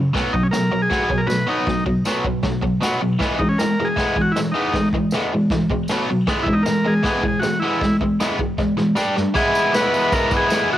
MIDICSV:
0, 0, Header, 1, 4, 480
1, 0, Start_track
1, 0, Tempo, 383877
1, 188, Time_signature, 4, 2, 24, 8
1, 13478, End_track
2, 0, Start_track
2, 0, Title_t, "Transistor combo organ"
2, 0, Program_c, 0, 18
2, 409, Note_on_c, 0, 63, 78
2, 538, Note_on_c, 0, 61, 81
2, 540, Note_off_c, 0, 63, 0
2, 593, Note_off_c, 0, 61, 0
2, 640, Note_on_c, 0, 70, 89
2, 1021, Note_off_c, 0, 70, 0
2, 1028, Note_on_c, 0, 68, 97
2, 1474, Note_on_c, 0, 70, 102
2, 1517, Note_off_c, 0, 68, 0
2, 1585, Note_on_c, 0, 71, 100
2, 1597, Note_off_c, 0, 70, 0
2, 1848, Note_off_c, 0, 71, 0
2, 1862, Note_on_c, 0, 63, 79
2, 2304, Note_off_c, 0, 63, 0
2, 4238, Note_on_c, 0, 63, 82
2, 4353, Note_off_c, 0, 63, 0
2, 4362, Note_on_c, 0, 61, 82
2, 4481, Note_on_c, 0, 70, 97
2, 4488, Note_off_c, 0, 61, 0
2, 4812, Note_on_c, 0, 68, 103
2, 4854, Note_off_c, 0, 70, 0
2, 5270, Note_on_c, 0, 66, 95
2, 5273, Note_off_c, 0, 68, 0
2, 5398, Note_on_c, 0, 64, 86
2, 5407, Note_off_c, 0, 66, 0
2, 5516, Note_off_c, 0, 64, 0
2, 5646, Note_on_c, 0, 63, 77
2, 6110, Note_off_c, 0, 63, 0
2, 8041, Note_on_c, 0, 64, 84
2, 8166, Note_on_c, 0, 63, 88
2, 8188, Note_off_c, 0, 64, 0
2, 8291, Note_on_c, 0, 70, 108
2, 8297, Note_off_c, 0, 63, 0
2, 8597, Note_on_c, 0, 68, 105
2, 8681, Note_off_c, 0, 70, 0
2, 9090, Note_off_c, 0, 68, 0
2, 9105, Note_on_c, 0, 68, 92
2, 9249, Note_on_c, 0, 66, 90
2, 9262, Note_off_c, 0, 68, 0
2, 9492, Note_off_c, 0, 66, 0
2, 9499, Note_on_c, 0, 64, 73
2, 9962, Note_off_c, 0, 64, 0
2, 11696, Note_on_c, 0, 68, 100
2, 12185, Note_on_c, 0, 71, 100
2, 12193, Note_off_c, 0, 68, 0
2, 12666, Note_on_c, 0, 70, 102
2, 12678, Note_off_c, 0, 71, 0
2, 12912, Note_off_c, 0, 70, 0
2, 12963, Note_on_c, 0, 68, 90
2, 13382, Note_off_c, 0, 68, 0
2, 13419, Note_on_c, 0, 66, 87
2, 13478, Note_off_c, 0, 66, 0
2, 13478, End_track
3, 0, Start_track
3, 0, Title_t, "Overdriven electric guitar"
3, 0, Program_c, 1, 29
3, 0, Note_on_c, 1, 42, 75
3, 0, Note_on_c, 1, 49, 85
3, 162, Note_off_c, 1, 42, 0
3, 162, Note_off_c, 1, 49, 0
3, 167, Note_on_c, 1, 47, 80
3, 182, Note_on_c, 1, 54, 84
3, 187, Note_on_c, 1, 59, 92
3, 397, Note_off_c, 1, 47, 0
3, 402, Note_off_c, 1, 54, 0
3, 411, Note_off_c, 1, 59, 0
3, 412, Note_on_c, 1, 47, 60
3, 417, Note_on_c, 1, 54, 65
3, 634, Note_off_c, 1, 47, 0
3, 636, Note_off_c, 1, 54, 0
3, 659, Note_on_c, 1, 47, 73
3, 663, Note_on_c, 1, 54, 79
3, 876, Note_off_c, 1, 47, 0
3, 879, Note_off_c, 1, 54, 0
3, 895, Note_on_c, 1, 47, 72
3, 897, Note_on_c, 1, 54, 65
3, 1109, Note_off_c, 1, 47, 0
3, 1115, Note_off_c, 1, 54, 0
3, 1124, Note_on_c, 1, 47, 89
3, 1145, Note_on_c, 1, 54, 95
3, 1149, Note_on_c, 1, 59, 96
3, 1351, Note_off_c, 1, 47, 0
3, 1363, Note_off_c, 1, 54, 0
3, 1366, Note_on_c, 1, 47, 55
3, 1369, Note_off_c, 1, 59, 0
3, 1378, Note_on_c, 1, 54, 70
3, 1577, Note_off_c, 1, 54, 0
3, 1578, Note_off_c, 1, 47, 0
3, 1592, Note_on_c, 1, 54, 76
3, 1593, Note_on_c, 1, 47, 67
3, 1820, Note_off_c, 1, 54, 0
3, 1821, Note_off_c, 1, 47, 0
3, 1837, Note_on_c, 1, 47, 80
3, 1840, Note_on_c, 1, 54, 88
3, 1856, Note_on_c, 1, 59, 89
3, 2068, Note_off_c, 1, 47, 0
3, 2070, Note_off_c, 1, 54, 0
3, 2081, Note_off_c, 1, 59, 0
3, 2083, Note_on_c, 1, 47, 72
3, 2085, Note_on_c, 1, 54, 72
3, 2305, Note_off_c, 1, 47, 0
3, 2305, Note_off_c, 1, 54, 0
3, 2325, Note_on_c, 1, 54, 75
3, 2328, Note_on_c, 1, 47, 60
3, 2545, Note_off_c, 1, 54, 0
3, 2546, Note_off_c, 1, 47, 0
3, 2573, Note_on_c, 1, 47, 92
3, 2583, Note_on_c, 1, 54, 97
3, 2588, Note_on_c, 1, 59, 88
3, 2798, Note_off_c, 1, 47, 0
3, 2803, Note_off_c, 1, 54, 0
3, 2806, Note_off_c, 1, 59, 0
3, 2814, Note_on_c, 1, 47, 72
3, 2826, Note_on_c, 1, 54, 77
3, 3028, Note_off_c, 1, 47, 0
3, 3034, Note_off_c, 1, 54, 0
3, 3047, Note_on_c, 1, 47, 74
3, 3058, Note_on_c, 1, 54, 87
3, 3264, Note_off_c, 1, 47, 0
3, 3270, Note_off_c, 1, 54, 0
3, 3283, Note_on_c, 1, 47, 58
3, 3291, Note_on_c, 1, 54, 78
3, 3502, Note_off_c, 1, 47, 0
3, 3506, Note_off_c, 1, 54, 0
3, 3522, Note_on_c, 1, 47, 93
3, 3540, Note_on_c, 1, 54, 81
3, 3551, Note_on_c, 1, 59, 87
3, 3751, Note_off_c, 1, 47, 0
3, 3759, Note_off_c, 1, 54, 0
3, 3765, Note_off_c, 1, 59, 0
3, 3772, Note_on_c, 1, 54, 73
3, 3774, Note_on_c, 1, 47, 72
3, 3986, Note_off_c, 1, 54, 0
3, 3987, Note_off_c, 1, 47, 0
3, 3993, Note_on_c, 1, 52, 78
3, 4009, Note_on_c, 1, 56, 84
3, 4017, Note_on_c, 1, 59, 87
3, 4226, Note_off_c, 1, 52, 0
3, 4234, Note_off_c, 1, 56, 0
3, 4237, Note_off_c, 1, 59, 0
3, 4249, Note_on_c, 1, 56, 68
3, 4255, Note_on_c, 1, 52, 60
3, 4464, Note_off_c, 1, 56, 0
3, 4466, Note_off_c, 1, 52, 0
3, 4504, Note_on_c, 1, 52, 71
3, 4508, Note_on_c, 1, 56, 89
3, 4711, Note_off_c, 1, 52, 0
3, 4713, Note_off_c, 1, 56, 0
3, 4747, Note_on_c, 1, 52, 64
3, 4751, Note_on_c, 1, 56, 76
3, 4939, Note_off_c, 1, 52, 0
3, 4954, Note_off_c, 1, 56, 0
3, 4954, Note_on_c, 1, 52, 86
3, 4972, Note_on_c, 1, 56, 92
3, 4977, Note_on_c, 1, 59, 97
3, 5185, Note_off_c, 1, 52, 0
3, 5194, Note_off_c, 1, 56, 0
3, 5197, Note_off_c, 1, 59, 0
3, 5208, Note_on_c, 1, 52, 61
3, 5216, Note_on_c, 1, 56, 70
3, 5422, Note_off_c, 1, 52, 0
3, 5426, Note_off_c, 1, 56, 0
3, 5459, Note_on_c, 1, 56, 78
3, 5467, Note_on_c, 1, 52, 78
3, 5662, Note_off_c, 1, 52, 0
3, 5668, Note_off_c, 1, 56, 0
3, 5677, Note_on_c, 1, 52, 87
3, 5687, Note_on_c, 1, 56, 90
3, 5701, Note_on_c, 1, 59, 95
3, 5906, Note_off_c, 1, 52, 0
3, 5911, Note_off_c, 1, 56, 0
3, 5918, Note_off_c, 1, 59, 0
3, 5937, Note_on_c, 1, 52, 75
3, 5943, Note_on_c, 1, 56, 83
3, 6146, Note_off_c, 1, 52, 0
3, 6150, Note_off_c, 1, 56, 0
3, 6175, Note_on_c, 1, 52, 67
3, 6181, Note_on_c, 1, 56, 73
3, 6386, Note_off_c, 1, 52, 0
3, 6389, Note_off_c, 1, 56, 0
3, 6422, Note_on_c, 1, 52, 99
3, 6431, Note_on_c, 1, 56, 96
3, 6440, Note_on_c, 1, 59, 108
3, 6639, Note_off_c, 1, 52, 0
3, 6643, Note_off_c, 1, 56, 0
3, 6648, Note_off_c, 1, 59, 0
3, 6668, Note_on_c, 1, 56, 79
3, 6670, Note_on_c, 1, 52, 75
3, 6872, Note_off_c, 1, 56, 0
3, 6873, Note_off_c, 1, 52, 0
3, 6897, Note_on_c, 1, 52, 77
3, 6900, Note_on_c, 1, 56, 78
3, 7107, Note_off_c, 1, 52, 0
3, 7108, Note_off_c, 1, 56, 0
3, 7136, Note_on_c, 1, 52, 71
3, 7137, Note_on_c, 1, 56, 71
3, 7346, Note_off_c, 1, 52, 0
3, 7347, Note_off_c, 1, 56, 0
3, 7374, Note_on_c, 1, 47, 91
3, 7391, Note_on_c, 1, 54, 90
3, 7394, Note_on_c, 1, 59, 96
3, 7595, Note_off_c, 1, 47, 0
3, 7604, Note_off_c, 1, 54, 0
3, 7605, Note_off_c, 1, 59, 0
3, 7626, Note_on_c, 1, 47, 67
3, 7627, Note_on_c, 1, 54, 74
3, 7832, Note_off_c, 1, 47, 0
3, 7832, Note_off_c, 1, 54, 0
3, 7843, Note_on_c, 1, 52, 78
3, 7861, Note_on_c, 1, 56, 93
3, 7869, Note_on_c, 1, 59, 92
3, 8070, Note_off_c, 1, 52, 0
3, 8079, Note_off_c, 1, 56, 0
3, 8083, Note_off_c, 1, 59, 0
3, 8096, Note_on_c, 1, 56, 69
3, 8098, Note_on_c, 1, 52, 58
3, 8307, Note_off_c, 1, 56, 0
3, 8309, Note_off_c, 1, 52, 0
3, 8324, Note_on_c, 1, 52, 74
3, 8328, Note_on_c, 1, 56, 91
3, 8542, Note_off_c, 1, 52, 0
3, 8544, Note_off_c, 1, 56, 0
3, 8566, Note_on_c, 1, 52, 67
3, 8577, Note_on_c, 1, 56, 77
3, 8783, Note_off_c, 1, 52, 0
3, 8789, Note_off_c, 1, 56, 0
3, 8797, Note_on_c, 1, 52, 88
3, 8809, Note_on_c, 1, 56, 98
3, 8824, Note_on_c, 1, 59, 99
3, 9026, Note_off_c, 1, 52, 0
3, 9035, Note_off_c, 1, 56, 0
3, 9041, Note_on_c, 1, 52, 66
3, 9043, Note_off_c, 1, 59, 0
3, 9049, Note_on_c, 1, 56, 74
3, 9262, Note_off_c, 1, 52, 0
3, 9265, Note_off_c, 1, 56, 0
3, 9289, Note_on_c, 1, 52, 70
3, 9307, Note_on_c, 1, 56, 85
3, 9506, Note_off_c, 1, 52, 0
3, 9515, Note_off_c, 1, 56, 0
3, 9537, Note_on_c, 1, 52, 91
3, 9541, Note_on_c, 1, 56, 107
3, 9554, Note_on_c, 1, 59, 90
3, 9754, Note_off_c, 1, 52, 0
3, 9754, Note_off_c, 1, 56, 0
3, 9769, Note_off_c, 1, 59, 0
3, 9769, Note_on_c, 1, 52, 68
3, 9769, Note_on_c, 1, 56, 75
3, 9987, Note_off_c, 1, 52, 0
3, 9987, Note_off_c, 1, 56, 0
3, 10019, Note_on_c, 1, 52, 56
3, 10028, Note_on_c, 1, 56, 65
3, 10233, Note_off_c, 1, 52, 0
3, 10237, Note_off_c, 1, 56, 0
3, 10258, Note_on_c, 1, 52, 89
3, 10261, Note_on_c, 1, 56, 97
3, 10275, Note_on_c, 1, 59, 114
3, 10473, Note_off_c, 1, 52, 0
3, 10477, Note_off_c, 1, 56, 0
3, 10488, Note_on_c, 1, 52, 64
3, 10491, Note_off_c, 1, 59, 0
3, 10492, Note_on_c, 1, 56, 74
3, 10708, Note_off_c, 1, 52, 0
3, 10710, Note_off_c, 1, 56, 0
3, 10736, Note_on_c, 1, 52, 69
3, 10736, Note_on_c, 1, 56, 89
3, 10952, Note_off_c, 1, 52, 0
3, 10952, Note_off_c, 1, 56, 0
3, 10967, Note_on_c, 1, 52, 69
3, 10976, Note_on_c, 1, 56, 75
3, 11188, Note_off_c, 1, 52, 0
3, 11193, Note_off_c, 1, 56, 0
3, 11196, Note_on_c, 1, 55, 91
3, 11211, Note_on_c, 1, 62, 92
3, 11224, Note_on_c, 1, 67, 99
3, 11433, Note_off_c, 1, 55, 0
3, 11440, Note_off_c, 1, 62, 0
3, 11447, Note_off_c, 1, 67, 0
3, 11458, Note_on_c, 1, 55, 72
3, 11460, Note_on_c, 1, 62, 81
3, 11674, Note_off_c, 1, 55, 0
3, 11676, Note_off_c, 1, 62, 0
3, 11680, Note_on_c, 1, 52, 82
3, 11706, Note_on_c, 1, 56, 89
3, 11717, Note_on_c, 1, 59, 100
3, 11728, Note_on_c, 1, 64, 94
3, 12145, Note_off_c, 1, 52, 0
3, 12160, Note_on_c, 1, 52, 80
3, 12163, Note_off_c, 1, 56, 0
3, 12178, Note_on_c, 1, 56, 80
3, 12187, Note_off_c, 1, 59, 0
3, 12192, Note_on_c, 1, 59, 85
3, 12198, Note_off_c, 1, 64, 0
3, 12213, Note_on_c, 1, 64, 92
3, 12391, Note_off_c, 1, 64, 0
3, 12406, Note_on_c, 1, 64, 76
3, 12426, Note_off_c, 1, 59, 0
3, 12431, Note_on_c, 1, 59, 62
3, 12433, Note_off_c, 1, 56, 0
3, 12448, Note_on_c, 1, 56, 68
3, 12637, Note_off_c, 1, 52, 0
3, 12646, Note_off_c, 1, 56, 0
3, 12652, Note_on_c, 1, 52, 91
3, 12661, Note_on_c, 1, 56, 90
3, 12677, Note_off_c, 1, 64, 0
3, 12678, Note_off_c, 1, 59, 0
3, 12683, Note_on_c, 1, 59, 94
3, 12692, Note_on_c, 1, 64, 93
3, 12874, Note_off_c, 1, 64, 0
3, 12889, Note_on_c, 1, 64, 74
3, 12911, Note_off_c, 1, 59, 0
3, 12916, Note_on_c, 1, 59, 62
3, 12925, Note_off_c, 1, 56, 0
3, 12940, Note_on_c, 1, 56, 65
3, 13099, Note_off_c, 1, 52, 0
3, 13114, Note_on_c, 1, 52, 83
3, 13121, Note_off_c, 1, 56, 0
3, 13136, Note_on_c, 1, 56, 78
3, 13148, Note_off_c, 1, 59, 0
3, 13153, Note_on_c, 1, 59, 84
3, 13160, Note_off_c, 1, 64, 0
3, 13175, Note_on_c, 1, 64, 79
3, 13478, Note_off_c, 1, 52, 0
3, 13478, Note_off_c, 1, 56, 0
3, 13478, Note_off_c, 1, 59, 0
3, 13478, Note_off_c, 1, 64, 0
3, 13478, End_track
4, 0, Start_track
4, 0, Title_t, "Drums"
4, 183, Note_on_c, 9, 36, 104
4, 183, Note_on_c, 9, 46, 55
4, 194, Note_on_c, 9, 38, 110
4, 308, Note_off_c, 9, 36, 0
4, 308, Note_off_c, 9, 46, 0
4, 319, Note_off_c, 9, 38, 0
4, 423, Note_on_c, 9, 36, 86
4, 548, Note_off_c, 9, 36, 0
4, 653, Note_on_c, 9, 46, 54
4, 665, Note_on_c, 9, 38, 108
4, 671, Note_on_c, 9, 54, 107
4, 778, Note_off_c, 9, 46, 0
4, 790, Note_off_c, 9, 38, 0
4, 796, Note_off_c, 9, 54, 0
4, 1133, Note_on_c, 9, 46, 46
4, 1137, Note_on_c, 9, 36, 99
4, 1144, Note_on_c, 9, 38, 102
4, 1258, Note_off_c, 9, 46, 0
4, 1262, Note_off_c, 9, 36, 0
4, 1269, Note_off_c, 9, 38, 0
4, 1374, Note_on_c, 9, 36, 81
4, 1499, Note_off_c, 9, 36, 0
4, 1612, Note_on_c, 9, 46, 52
4, 1623, Note_on_c, 9, 38, 113
4, 1624, Note_on_c, 9, 54, 89
4, 1737, Note_off_c, 9, 46, 0
4, 1748, Note_off_c, 9, 38, 0
4, 1749, Note_off_c, 9, 54, 0
4, 2089, Note_on_c, 9, 36, 112
4, 2090, Note_on_c, 9, 46, 54
4, 2101, Note_on_c, 9, 38, 103
4, 2214, Note_off_c, 9, 36, 0
4, 2215, Note_off_c, 9, 46, 0
4, 2226, Note_off_c, 9, 38, 0
4, 2329, Note_on_c, 9, 36, 90
4, 2454, Note_off_c, 9, 36, 0
4, 2566, Note_on_c, 9, 54, 102
4, 2580, Note_on_c, 9, 38, 104
4, 2691, Note_off_c, 9, 54, 0
4, 2705, Note_off_c, 9, 38, 0
4, 2807, Note_on_c, 9, 36, 90
4, 2932, Note_off_c, 9, 36, 0
4, 3029, Note_on_c, 9, 46, 56
4, 3040, Note_on_c, 9, 38, 103
4, 3043, Note_on_c, 9, 36, 96
4, 3154, Note_off_c, 9, 46, 0
4, 3165, Note_off_c, 9, 38, 0
4, 3168, Note_off_c, 9, 36, 0
4, 3283, Note_on_c, 9, 36, 80
4, 3408, Note_off_c, 9, 36, 0
4, 3521, Note_on_c, 9, 46, 55
4, 3532, Note_on_c, 9, 38, 100
4, 3540, Note_on_c, 9, 54, 96
4, 3646, Note_off_c, 9, 46, 0
4, 3657, Note_off_c, 9, 38, 0
4, 3665, Note_off_c, 9, 54, 0
4, 4005, Note_on_c, 9, 36, 107
4, 4005, Note_on_c, 9, 46, 52
4, 4016, Note_on_c, 9, 38, 96
4, 4130, Note_off_c, 9, 36, 0
4, 4130, Note_off_c, 9, 46, 0
4, 4141, Note_off_c, 9, 38, 0
4, 4245, Note_on_c, 9, 36, 83
4, 4370, Note_off_c, 9, 36, 0
4, 4480, Note_on_c, 9, 46, 53
4, 4491, Note_on_c, 9, 38, 119
4, 4495, Note_on_c, 9, 54, 106
4, 4605, Note_off_c, 9, 46, 0
4, 4616, Note_off_c, 9, 38, 0
4, 4620, Note_off_c, 9, 54, 0
4, 4964, Note_on_c, 9, 36, 91
4, 4968, Note_on_c, 9, 46, 50
4, 4979, Note_on_c, 9, 38, 103
4, 5089, Note_off_c, 9, 36, 0
4, 5093, Note_off_c, 9, 46, 0
4, 5104, Note_off_c, 9, 38, 0
4, 5202, Note_on_c, 9, 36, 80
4, 5327, Note_off_c, 9, 36, 0
4, 5441, Note_on_c, 9, 46, 51
4, 5452, Note_on_c, 9, 38, 109
4, 5458, Note_on_c, 9, 54, 90
4, 5566, Note_off_c, 9, 46, 0
4, 5577, Note_off_c, 9, 38, 0
4, 5583, Note_off_c, 9, 54, 0
4, 5919, Note_on_c, 9, 46, 52
4, 5922, Note_on_c, 9, 36, 99
4, 5931, Note_on_c, 9, 38, 116
4, 6044, Note_off_c, 9, 46, 0
4, 6047, Note_off_c, 9, 36, 0
4, 6056, Note_off_c, 9, 38, 0
4, 6161, Note_on_c, 9, 36, 82
4, 6286, Note_off_c, 9, 36, 0
4, 6388, Note_on_c, 9, 54, 92
4, 6395, Note_on_c, 9, 46, 57
4, 6406, Note_on_c, 9, 38, 115
4, 6513, Note_off_c, 9, 54, 0
4, 6520, Note_off_c, 9, 46, 0
4, 6531, Note_off_c, 9, 38, 0
4, 6871, Note_on_c, 9, 46, 54
4, 6878, Note_on_c, 9, 36, 111
4, 6882, Note_on_c, 9, 38, 92
4, 6996, Note_off_c, 9, 46, 0
4, 7003, Note_off_c, 9, 36, 0
4, 7007, Note_off_c, 9, 38, 0
4, 7121, Note_on_c, 9, 36, 84
4, 7246, Note_off_c, 9, 36, 0
4, 7349, Note_on_c, 9, 54, 85
4, 7357, Note_on_c, 9, 46, 61
4, 7368, Note_on_c, 9, 38, 106
4, 7474, Note_off_c, 9, 54, 0
4, 7482, Note_off_c, 9, 46, 0
4, 7494, Note_off_c, 9, 38, 0
4, 7836, Note_on_c, 9, 46, 51
4, 7842, Note_on_c, 9, 36, 107
4, 7847, Note_on_c, 9, 38, 106
4, 7961, Note_off_c, 9, 46, 0
4, 7967, Note_off_c, 9, 36, 0
4, 7972, Note_off_c, 9, 38, 0
4, 8082, Note_on_c, 9, 36, 80
4, 8207, Note_off_c, 9, 36, 0
4, 8319, Note_on_c, 9, 46, 56
4, 8325, Note_on_c, 9, 54, 88
4, 8330, Note_on_c, 9, 38, 113
4, 8444, Note_off_c, 9, 46, 0
4, 8450, Note_off_c, 9, 54, 0
4, 8455, Note_off_c, 9, 38, 0
4, 8795, Note_on_c, 9, 46, 53
4, 8803, Note_on_c, 9, 36, 95
4, 8806, Note_on_c, 9, 38, 101
4, 8920, Note_off_c, 9, 46, 0
4, 8928, Note_off_c, 9, 36, 0
4, 8931, Note_off_c, 9, 38, 0
4, 9045, Note_on_c, 9, 36, 92
4, 9170, Note_off_c, 9, 36, 0
4, 9283, Note_on_c, 9, 46, 52
4, 9294, Note_on_c, 9, 38, 110
4, 9294, Note_on_c, 9, 54, 82
4, 9408, Note_off_c, 9, 46, 0
4, 9419, Note_off_c, 9, 38, 0
4, 9419, Note_off_c, 9, 54, 0
4, 9771, Note_on_c, 9, 36, 109
4, 9775, Note_on_c, 9, 46, 52
4, 9786, Note_on_c, 9, 38, 107
4, 9896, Note_off_c, 9, 36, 0
4, 9900, Note_off_c, 9, 46, 0
4, 9911, Note_off_c, 9, 38, 0
4, 10014, Note_on_c, 9, 36, 82
4, 10139, Note_off_c, 9, 36, 0
4, 10254, Note_on_c, 9, 46, 55
4, 10258, Note_on_c, 9, 54, 81
4, 10265, Note_on_c, 9, 38, 108
4, 10379, Note_off_c, 9, 46, 0
4, 10383, Note_off_c, 9, 54, 0
4, 10390, Note_off_c, 9, 38, 0
4, 10493, Note_on_c, 9, 36, 90
4, 10618, Note_off_c, 9, 36, 0
4, 10731, Note_on_c, 9, 36, 92
4, 10737, Note_on_c, 9, 38, 51
4, 10856, Note_off_c, 9, 36, 0
4, 10862, Note_off_c, 9, 38, 0
4, 10978, Note_on_c, 9, 38, 61
4, 11103, Note_off_c, 9, 38, 0
4, 11209, Note_on_c, 9, 54, 87
4, 11226, Note_on_c, 9, 38, 84
4, 11334, Note_off_c, 9, 54, 0
4, 11351, Note_off_c, 9, 38, 0
4, 11467, Note_on_c, 9, 38, 83
4, 11592, Note_off_c, 9, 38, 0
4, 11694, Note_on_c, 9, 36, 106
4, 11694, Note_on_c, 9, 49, 112
4, 11819, Note_off_c, 9, 36, 0
4, 11819, Note_off_c, 9, 49, 0
4, 11943, Note_on_c, 9, 54, 90
4, 12068, Note_off_c, 9, 54, 0
4, 12179, Note_on_c, 9, 46, 61
4, 12184, Note_on_c, 9, 54, 108
4, 12190, Note_on_c, 9, 38, 120
4, 12304, Note_off_c, 9, 46, 0
4, 12309, Note_off_c, 9, 54, 0
4, 12315, Note_off_c, 9, 38, 0
4, 12429, Note_on_c, 9, 54, 86
4, 12554, Note_off_c, 9, 54, 0
4, 12656, Note_on_c, 9, 36, 102
4, 12656, Note_on_c, 9, 46, 55
4, 12659, Note_on_c, 9, 54, 82
4, 12781, Note_off_c, 9, 36, 0
4, 12781, Note_off_c, 9, 46, 0
4, 12784, Note_off_c, 9, 54, 0
4, 12892, Note_on_c, 9, 54, 80
4, 12898, Note_on_c, 9, 36, 92
4, 13017, Note_off_c, 9, 54, 0
4, 13023, Note_off_c, 9, 36, 0
4, 13133, Note_on_c, 9, 54, 97
4, 13139, Note_on_c, 9, 46, 58
4, 13150, Note_on_c, 9, 38, 110
4, 13258, Note_off_c, 9, 54, 0
4, 13264, Note_off_c, 9, 46, 0
4, 13275, Note_off_c, 9, 38, 0
4, 13478, End_track
0, 0, End_of_file